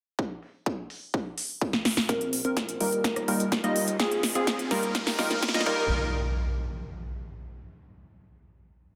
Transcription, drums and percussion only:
0.19 kick
0.42 open hi-hat
0.66 kick
0.90 open hi-hat
1.14 kick
1.38 open hi-hat
1.61 kick
1.73 snare
1.85 snare, open hi-hat
1.97 snare
2.09 kick, snare, closed hi-hat
2.21 closed hi-hat
2.33 open hi-hat
2.45 closed hi-hat
2.57 kick, snare, closed hi-hat
2.69 closed hi-hat
2.81 open hi-hat
2.92 closed hi-hat
3.04 kick, snare, closed hi-hat
3.16 cross-stick, closed hi-hat
3.28 open hi-hat
3.40 closed hi-hat
3.52 kick, snare, closed hi-hat
3.64 closed hi-hat
3.76 open hi-hat
3.88 closed hi-hat
4.00 kick, snare, closed hi-hat
4.11 closed hi-hat
4.23 snare, open hi-hat
4.35 closed hi-hat
4.47 kick, snare, closed hi-hat
4.59 closed hi-hat
4.71 snare, open hi-hat
4.83 closed hi-hat
4.95 kick, snare, closed hi-hat
5.07 snare, open hi-hat
5.19 snare, open hi-hat
5.31 snare, closed hi-hat
5.42 kick, snare, closed hi-hat
5.48 snare
5.54 snare, closed hi-hat
5.60 snare
5.66 kick

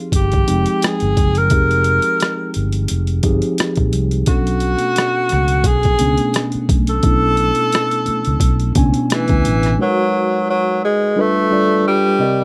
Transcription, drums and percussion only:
0.12 kick, closed hi-hat
0.32 kick, closed hi-hat
0.48 closed hi-hat
0.66 closed hi-hat
0.82 cross-stick, closed hi-hat
1.00 closed hi-hat
1.17 kick, closed hi-hat
1.35 closed hi-hat
1.50 kick, closed hi-hat
1.71 closed hi-hat
1.84 closed hi-hat
2.02 closed hi-hat
2.20 cross-stick, closed hi-hat
2.54 closed hi-hat
2.72 closed hi-hat
2.88 closed hi-hat
3.07 closed hi-hat
3.23 kick, closed hi-hat
3.42 closed hi-hat
3.58 cross-stick, closed hi-hat
3.76 kick, closed hi-hat
3.93 closed hi-hat
4.11 closed hi-hat
4.26 kick, closed hi-hat, low conga
4.46 closed hi-hat, muted conga
4.60 closed hi-hat
4.79 closed hi-hat, high conga
4.95 cross-stick, closed hi-hat, muted conga
5.29 cross-stick, closed hi-hat, high conga, low conga
5.48 closed hi-hat
5.64 kick, closed hi-hat
5.83 kick, closed hi-hat, muted conga
5.99 closed hi-hat, high conga
6.18 closed hi-hat
6.33 cross-stick, closed hi-hat, high conga
6.52 closed hi-hat
6.69 kick, closed hi-hat, high conga, low conga
6.87 closed hi-hat
7.03 kick, closed hi-hat, low conga
7.37 closed hi-hat
7.55 closed hi-hat, high conga
7.71 cross-stick, closed hi-hat, muted conga
7.91 closed hi-hat, muted conga
8.06 closed hi-hat, high conga, low conga
8.25 closed hi-hat, high conga
8.40 kick, closed hi-hat
8.60 closed hi-hat, muted conga
8.75 kick, closed hi-hat, high conga
8.94 closed hi-hat
9.10 cross-stick, closed hi-hat, high conga
9.28 kick, closed hi-hat
9.44 closed hi-hat, high conga, low conga
9.63 cross-stick, closed hi-hat

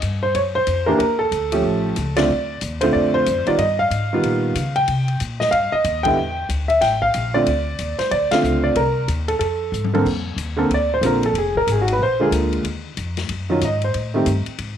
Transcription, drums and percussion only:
0.02 hi-hat pedal, ride
0.35 ride
0.67 hi-hat pedal, ride
1.00 ride
1.32 hi-hat pedal, ride
1.52 ride
1.96 hi-hat pedal, ride
2.16 snare, ride
2.61 hi-hat pedal, ride
2.81 ride
3.26 hi-hat pedal, ride
3.47 ride
3.58 ride
3.91 hi-hat pedal, ride
4.23 ride
4.55 hi-hat pedal, ride
4.76 ride
4.88 ride
5.08 ride
5.20 hi-hat pedal, ride
5.41 snare
5.52 ride
5.84 hi-hat pedal, ride
6.05 kick, ride
6.49 hi-hat pedal, ride
6.70 ride
6.82 snare, ride
7.02 kick
7.14 hi-hat pedal, ride
7.46 ride
7.79 hi-hat pedal, ride
7.99 snare, ride
8.11 ride
8.31 snare, ride
8.44 hi-hat pedal
8.76 ride
9.08 hi-hat pedal, ride
9.28 ride
9.41 ride
9.73 hi-hat pedal
9.84 high tom
9.95 high tom
10.06 kick, crash
10.38 hi-hat pedal, ride
10.71 ride
11.03 hi-hat pedal, ride
11.23 ride
11.35 ride
11.56 kick
11.67 hi-hat pedal, ride
11.88 ride
12.32 hi-hat pedal, ride
12.53 ride
12.65 ride
12.97 hi-hat pedal, ride
13.17 snare, ride
13.29 ride
13.61 hi-hat pedal, ride
13.82 ride
13.94 ride
14.26 hi-hat pedal, ride
14.46 ride
14.58 ride

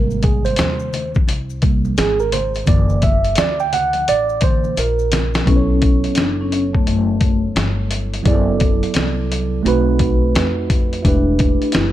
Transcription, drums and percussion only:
0.11 maracas
0.22 kick, closed hi-hat, low conga, maracas
0.45 closed hi-hat, maracas
0.56 snare, closed hi-hat, high conga, maracas
0.79 maracas
0.93 closed hi-hat, low conga, maracas
1.15 kick, high conga, maracas
1.28 closed hi-hat, maracas
1.50 maracas
1.62 kick, closed hi-hat, maracas
1.85 high conga, maracas
1.97 snare, closed hi-hat, maracas
2.19 maracas
2.32 closed hi-hat, low conga, maracas
2.54 closed hi-hat, maracas
2.67 kick, closed hi-hat, maracas
2.89 maracas
3.02 kick, closed hi-hat, low conga, maracas
3.24 closed hi-hat, maracas
3.35 snare, closed hi-hat, high conga, maracas
3.60 maracas
3.73 closed hi-hat, low conga, maracas
3.93 closed hi-hat, high conga, maracas
4.08 closed hi-hat, maracas
4.29 maracas
4.41 kick, closed hi-hat, maracas
4.64 high conga, maracas
4.77 closed hi-hat, maracas
4.99 maracas
5.12 snare, closed hi-hat, low conga, maracas
5.34 snare, closed hi-hat, maracas
5.47 kick, closed hi-hat
5.82 kick, closed hi-hat
6.04 closed hi-hat
6.15 snare, closed hi-hat
6.52 closed hi-hat
6.75 kick
6.87 closed hi-hat
7.21 kick, closed hi-hat
7.56 snare, closed hi-hat
7.91 closed hi-hat
8.14 closed hi-hat
8.25 kick, closed hi-hat
8.60 kick, closed hi-hat
8.83 closed hi-hat
8.94 snare, closed hi-hat
9.32 closed hi-hat
9.66 closed hi-hat
9.99 kick, closed hi-hat
10.35 snare, closed hi-hat
10.70 kick, closed hi-hat
10.93 closed hi-hat
11.05 kick, closed hi-hat
11.39 kick, closed hi-hat
11.62 closed hi-hat
11.72 snare, closed hi-hat

